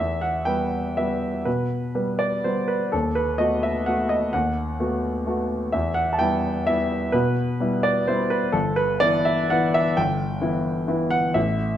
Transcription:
Already playing: E5
0.00 E2
0.21 F#5
0.45 G3 B3 B4 G5
0.97 G3 B3 B4 E5
1.45 B2 B4
1.95 G3 B3 B4
2.19 D5
2.44 G3 B3 B4 C5
2.68 B4
2.92 D#2 A4
3.15 B4
3.38 A3 B3 F#4 D#5
3.63 E5
3.86 A3 B3 F#4 F#5
4.09 D#5
4.33 D#2 F#5
4.80 A3 B3 F#4
5.27 A3 B3 F#4
5.72 E2 E5
5.94 F#5
6.13 A5
6.19 G3 B3 E4 G5
6.67 G3 B3 E4 E5
7.12 B2 B4
7.60 G3 B3 E4
7.83 D5
8.08 G3 B3 E4 C5
8.30 B4
8.52 G1 A4
8.76 B4
9.00 E3 B3 E4 D5
9.25 E5
9.50 E3 B3 E4 F#5
9.74 E5
9.97 G1 G5
10.42 E3 B3 E4
10.88 E3 B3 E4
11.11 F#5
11.34 A1 E5

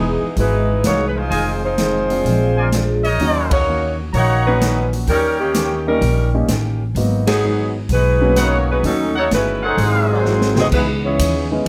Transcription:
Already playing: E1 E3 G#3 B3 D#4 G#4 B4 D#5 G#5
0.22 muted upright bass stroke
0.36 G#1 E3 G#3 B3 D#4 E4 F#4 B4, kick, open hi-hat
0.41 B3 D#4
0.84 C2 E3 G#3 A#3 B3 D#4 F#4 C#5, snare, closed hi-hat
1.08 B4
1.17 G#3 D#4 F4 C5
1.30 F1 F2 D#3 G#3 F4 C5 D#5 G#5, kick, open hi-hat
1.35 C4
1.65 G#3 D#4 F4 C5
1.78 F2 D#3 G#3 C4, snare, closed hi-hat
2.10 G#3 C4 D4 F4, open hi-hat
2.24 A#1 A#2 F3 G#3 D4, kick, open hi-hat
2.57 F4 A#4 D5 G#5
2.72 A#2 F3 G#3 D4, snare, closed hi-hat
3.04 D#4 A#4 C#5 D#5, open hi-hat
3.18 D#2 D#3 F#3 A#3 C#4 D#4, kick, open hi-hat
3.23 F#4
3.51 A#3 D#4 F#4 C#5, kick, ride
3.67 D#3 A#3 C#4 F#4
4.13 A#1 D#3 A#3 C#4 D#4 F#4 C#5 F#5 A#5, kick, open hi-hat
4.46 A#2 F#3 C#4 D#4 F#4 B4
4.60 D#3 A#3 C#4 F#4, snare, closed hi-hat
4.93 open hi-hat
5.07 D#2 D#3 G3 A#3 C#4 D#4 G4 A#4 C#5 G5, kick, open hi-hat
5.40 D#3 A#3 C#4 G4
5.54 D#3 A#3 C#4 G4, snare, closed hi-hat
5.87 G3 A#3 C#4 D#4 A#4
6.01 A#1 D#3 A#3 C#4 G4, kick, open hi-hat
6.34 G3 A#3 C#4 D#4
6.48 A1 D#3 A#3 C#4 G4, snare, closed hi-hat
6.95 G#1 G#2 F#3 A#3 B3 D#4, kick, open hi-hat
6.99 D#4
7.27 F#3 B3 D#4 G#4, snare, ride
7.43 G#2 F#3 B3 D#4
7.89 B1 G#2 F#3 B3 D#4 B4, kick, open hi-hat
7.93 G#3 D#4 F#4
8.21 F#3 A#3 B3 C#4
8.36 G#2 F#3 B3 D#4 G#4 B4 C#5 F#5, snare, closed hi-hat
8.40 A#3 F#4
8.71 G#3 D#4 F#4 B4
8.83 D#2 D#3 F#3 A3 C#4 D#4 F#4 A4, kick, open hi-hat
9.16 A3 D#4 F#4 A4 C#5 F#5
9.31 G1 D#3 G#3 A3 C#4 E4 F#4 B4, snare, closed hi-hat
9.63 F#3 C#4 D#4 G#4 A4 C5 F#5
9.77 G#1 G#2 C3 D#3 F#3 G#3 C4 D#4 G#4, kick, open hi-hat
9.82 E4
10.12 D#3 F#3 G#3 C4 D#4 F#4 C5
10.25 G#2 F#3 C4 E4, snare
10.41 snare
10.56 C#2 E3 F#3 G#3 B3 C4 D#4 F#4 G#4, snare
10.60 C4 F#4 D#5
10.72 C#2 C#3 E3 G#3 B3 D#4 E4 B4, kick, crash
11.05 E3 G#3 B3 C#4 E4 G#4 C#5
11.19 D#2 C#3 E3 B3 D#4, kick, hi-hat pedal, ride
11.51 E3 G#3 B3 C#4 D#5

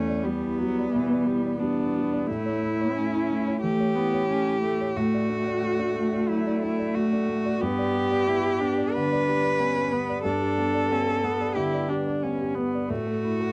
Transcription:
Already playing: E2 A3 C#4 E4 D5
0.09 D5
0.23 G3 B3
0.27 G3
0.45 E4
0.58 F#3 G3
0.79 D5
0.91 E3
0.95 B2
1.13 D5
1.27 G3 E4
1.46 D5
1.58 B3 D4
1.62 G3
1.80 E4
1.98 G3
2.13 D5
2.27 A3 E4
2.31 A2
2.46 C#5
2.63 E4
2.81 C#5
2.94 A3 C#4
3.15 E4
3.30 A3
3.48 C#5
3.61 E3 A3 G4
3.80 C#5
3.95 B3 E4
4.14 C#5
4.28 A3 C#4
4.48 E4
4.62 A3
4.81 C#5
4.96 A2 A3 F#4
5.14 D5
5.30 D4
5.47 D5
5.63 A3
5.79 D4
5.96 A3
6.13 D5
6.28 F#3 E4
6.47 D5
6.62 D4 E4
6.79 D5
6.95 A3 F#4
7.13 D4
7.29 A3
7.46 D5
7.61 G2 B3 G4
7.79 D5
7.95 G4
8.12 D5
8.27 B3 E4
8.60 B3 D4
8.78 D5
8.93 D3 B4
9.13 D5
9.28 G4
9.44 D5
9.60 B3 C#4
9.76 G4
9.93 B3
10.10 D5
10.24 G2 D4 A4
10.41 G4
10.58 B3
10.75 D5
10.91 B3 C#4
11.07 G4
11.24 B3
11.41 D5
11.55 D3 E4 G4
11.74 D5
11.89 D4 G4
12.07 D5
12.23 B3 C#4
12.41 G4
12.55 B3
12.75 D5
12.89 A2 A3 F#4
13.07 A4
13.24 E4
13.41 A4

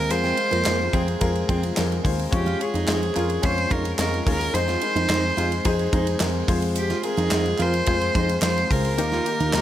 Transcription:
Already playing: D#2 G#3 C4 F4 G#4 A#4 C5 D#5
0.09 F2 G#3 C4 F4 G#4 A#4 C5, hi-hat pedal, ride
0.24 C4, snare
0.37 G#3 C4 F4 G#4 C5, ride
0.51 F2 A#3, ride
0.65 G#3 C4, clap, ride
0.66 F2 F4 G#4 C5, snare, clap
0.92 F2 G#3 C4 F4 G#4 C5, kick, ride
1.08 ride
1.19 F2 G#3 C4 F4 G#4 A#4, kick, ride
1.35 ride
1.47 F2 G#3 C4 F4 G#4 C5, kick, ride
1.63 ride
1.75 F2 G#3 C4 F4 G#4 A#4, snare, clap, ride
1.92 ride
2.03 D#2 G#3 C4 F4 G#4 C5, kick, open hi-hat, ride
2.19 ride
2.31 F2 G#3 C#4 F4 G4 G#4 C#5, kick, hi-hat pedal, ride
2.46 F4, ride
2.59 G#3 C#4 F4 G#4 C#5, ride
2.74 F2 D#4, ride
2.86 F2 G#3 C#4 F4 G#4 C5, snare, clap, ride
3.03 ride
3.14 F2 G#3 C#4 F4 G#4 A#4, clap, ride
3.30 ride
3.42 F2 G#3 C#4 F4 G#4 C5 C#5, kick, ride
3.58 ride
3.70 F2 G#3 C#4 D#4 F4 G#4 A#4 C#5, kick, ride
3.85 ride
3.98 F2 G#3 C#4 F4 G#4 A#4 D#5, snare, clap, ride
4.14 ride
4.26 D#2 G#3 C#4 F4 G#4 A#4, kick, open hi-hat, ride
4.41 ride
4.53 F2 G#3 C4 D#4 G#4 C5, hi-hat pedal, ride
4.68 F4, snare, ride
4.81 G#3 C4 D#4 G#4 A#4, ride
4.96 F2 D#4, ride
5.09 F2 G#3 C4 D#4 G#4 C5, snare, clap, ride
5.37 F2 G#3 C4 D#4 F4 G#4 C5, ride
5.52 ride
5.64 F2 G#3 C4 D#4 G#4 C5, kick, ride
5.79 ride
5.92 F2 G#3 C4 D#4 G#4 C5, kick, ride
6.07 ride
6.19 F2 G#3 C4 D#4 G#4 A#4, snare, clap, ride
6.47 F2 G#3 C4 F4 G#4 C5, kick, open hi-hat, ride
6.62 ride
6.75 G4, hi-hat pedal, ride
6.90 F4, snare, ride
7.02 G#3 C4 F4 G#4 A#4, ride
7.17 F2 D#4, ride
7.31 F2 G#3 C4 F4 G#4 D#5, snare, clap, ride
7.46 ride
7.58 F2 G#3 C4 F4 G#4 A#4 C5, clap, ride
7.74 ride
7.86 F2 G#3 C4 F4 G#4 C5, kick, ride
8.01 ride
8.14 F2 G#3 C4 D#4 F4 G#4 C5, kick, ride
8.29 ride
8.42 F2 G#3 C4 F4 G#4 C5, snare, clap, ride
8.58 ride
8.70 C#2 G#3 C4 F4 G#4 A#4 C5, kick, open hi-hat, ride
8.85 ride
8.98 D#2 D#3 A#3 D#4 F4 G4 A#4, hi-hat pedal, ride
9.12 F4, snare
9.25 A#3 D#4 F4 G4 A#4, ride
9.40 D#2 D#4, ride
9.53 D#2 A#3 D#4 F4 G4 A#4, snare, clap, ride

